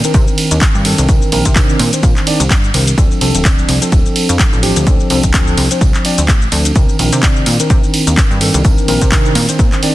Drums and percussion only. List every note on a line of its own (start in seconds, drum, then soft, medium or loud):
0.04 closed hi-hat medium
0.04 tambourine soft
0.04 shaker medium
0.14 kick loud
0.14 closed hi-hat soft
0.14 tambourine medium
0.14 shaker medium
0.28 tambourine soft
0.28 shaker soft
0.38 open hi-hat loud
0.38 ride medium
0.38 tambourine medium
0.51 closed hi-hat medium
0.51 tambourine soft
0.51 shaker medium
0.61 kick loud
0.61 clap loud
0.61 closed hi-hat medium
0.61 tambourine medium
0.61 shaker medium
0.75 tambourine soft
0.75 shaker soft
0.85 open hi-hat loud
0.85 ride medium
0.85 tambourine medium
0.98 closed hi-hat medium
0.98 tambourine soft
0.98 shaker medium
1.09 kick loud
1.09 closed hi-hat medium
1.09 tambourine medium
1.09 shaker medium
1.22 tambourine soft
1.22 shaker soft
1.32 open hi-hat loud
1.32 ride medium
1.32 tambourine medium
1.45 kick medium
1.45 closed hi-hat medium
1.45 tambourine soft
1.45 shaker medium
1.56 kick loud
1.56 clap loud
1.56 closed hi-hat medium
1.56 tambourine medium
1.56 shaker medium
1.69 tambourine soft
1.69 shaker soft
1.79 open hi-hat loud
1.79 ride medium
1.79 tambourine medium
1.93 closed hi-hat medium
1.93 tambourine soft
1.93 shaker medium
2.03 kick loud
2.03 closed hi-hat medium
2.03 tambourine medium
2.03 shaker medium
2.16 clap soft
2.16 tambourine soft
2.16 shaker soft
2.27 open hi-hat loud
2.27 ride medium
2.27 tambourine loud
2.40 closed hi-hat medium
2.40 tambourine soft
2.40 shaker medium
2.50 kick loud
2.50 clap loud
2.50 closed hi-hat medium
2.50 tambourine soft
2.50 shaker medium
2.64 tambourine soft
2.64 shaker soft
2.74 open hi-hat loud
2.74 ride medium
2.74 tambourine medium
2.87 closed hi-hat medium
2.87 tambourine soft
2.87 shaker medium
2.98 kick loud
2.98 closed hi-hat medium
2.98 tambourine medium
2.98 shaker medium
3.11 tambourine soft
3.11 shaker soft
3.21 open hi-hat loud
3.21 ride medium
3.21 tambourine medium
3.35 closed hi-hat medium
3.35 tambourine soft
3.35 shaker medium
3.45 kick loud
3.45 clap loud
3.45 closed hi-hat medium
3.45 tambourine medium
3.45 shaker medium
3.59 tambourine soft
3.59 shaker soft
3.69 open hi-hat loud
3.69 ride medium
3.69 tambourine medium
3.82 closed hi-hat medium
3.82 tambourine soft
3.82 shaker medium
3.92 kick loud
3.92 closed hi-hat medium
3.92 tambourine soft
3.92 shaker medium
4.06 tambourine soft
4.06 shaker soft
4.16 open hi-hat loud
4.16 ride medium
4.16 tambourine medium
4.29 closed hi-hat medium
4.29 tambourine soft
4.29 shaker medium
4.39 kick loud
4.39 clap loud
4.39 closed hi-hat medium
4.39 tambourine medium
4.39 shaker medium
4.52 tambourine soft
4.52 shaker soft
4.63 open hi-hat loud
4.63 ride medium
4.63 tambourine medium
4.76 closed hi-hat medium
4.76 tambourine soft
4.76 shaker medium
4.87 kick loud
4.87 closed hi-hat medium
4.87 tambourine medium
4.87 shaker medium
4.99 tambourine soft
4.99 shaker soft
5.10 open hi-hat loud
5.10 ride medium
5.10 tambourine loud
5.23 kick medium
5.23 closed hi-hat medium
5.23 tambourine soft
5.23 shaker medium
5.34 kick loud
5.34 clap loud
5.34 closed hi-hat medium
5.34 tambourine medium
5.34 shaker medium
5.47 tambourine soft
5.47 shaker soft
5.57 open hi-hat loud
5.57 ride medium
5.57 tambourine medium
5.71 closed hi-hat medium
5.71 tambourine soft
5.71 shaker medium
5.81 kick loud
5.81 closed hi-hat medium
5.81 tambourine medium
5.81 shaker medium
5.94 clap soft
5.94 tambourine soft
5.94 shaker soft
6.05 open hi-hat loud
6.05 ride medium
6.05 tambourine medium
6.18 closed hi-hat medium
6.18 tambourine soft
6.18 shaker medium
6.28 kick loud
6.28 clap loud
6.28 closed hi-hat medium
6.28 tambourine soft
6.28 shaker medium
6.42 tambourine soft
6.42 shaker soft
6.52 open hi-hat loud
6.52 ride medium
6.52 tambourine medium
6.65 closed hi-hat medium
6.65 tambourine soft
6.65 shaker medium
6.76 kick loud
6.76 closed hi-hat medium
6.76 tambourine medium
6.76 shaker medium
6.89 tambourine soft
6.89 shaker soft
6.99 open hi-hat loud
6.99 ride medium
6.99 tambourine medium
7.12 closed hi-hat medium
7.12 tambourine soft
7.12 shaker medium
7.23 kick loud
7.23 clap loud
7.23 closed hi-hat medium
7.23 tambourine medium
7.23 shaker medium
7.36 tambourine soft
7.36 shaker soft
7.46 open hi-hat loud
7.46 ride medium
7.46 tambourine loud
7.60 closed hi-hat medium
7.60 tambourine soft
7.60 shaker medium
7.70 kick loud
7.70 closed hi-hat medium
7.70 tambourine medium
7.70 shaker medium
7.83 tambourine soft
7.83 shaker soft
7.94 open hi-hat loud
7.94 ride medium
7.94 tambourine medium
8.07 closed hi-hat medium
8.07 tambourine soft
8.07 shaker medium
8.17 kick loud
8.17 clap loud
8.17 closed hi-hat medium
8.17 tambourine medium
8.17 shaker medium
8.31 tambourine soft
8.31 shaker soft
8.41 open hi-hat loud
8.41 ride medium
8.41 tambourine loud
8.54 closed hi-hat medium
8.54 tambourine soft
8.54 shaker medium
8.65 kick loud
8.65 closed hi-hat medium
8.65 tambourine medium
8.65 shaker medium
8.78 tambourine soft
8.78 shaker soft
8.88 open hi-hat loud
8.88 ride medium
8.88 tambourine medium
9.02 kick medium
9.02 closed hi-hat medium
9.02 tambourine soft
9.02 shaker medium
9.12 kick loud
9.12 clap loud
9.12 closed hi-hat medium
9.12 tambourine medium
9.12 shaker medium
9.25 tambourine soft
9.25 shaker soft
9.35 open hi-hat loud
9.35 ride medium
9.35 tambourine loud
9.49 closed hi-hat medium
9.49 tambourine soft
9.49 shaker medium
9.59 kick loud
9.59 closed hi-hat medium
9.59 tambourine medium
9.59 shaker medium
9.72 clap soft
9.72 tambourine soft
9.72 shaker soft
9.83 open hi-hat loud
9.83 ride medium
9.83 tambourine loud